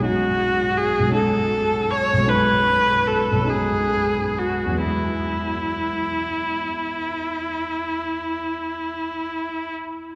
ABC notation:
X:1
M:12/8
L:1/8
Q:3/8=45
K:E
V:1 name="Viola"
F2 G A2 c B2 A G2 F | E8- E3 z |]
V:2 name="Grand piano" clef=bass
[B,,,F,G,CD]3 [B,,,F,G,CD]3 [B,,,F,G,CD]3 [B,,,F,G,CD]3 | [E,,F,G,B,E]12 |]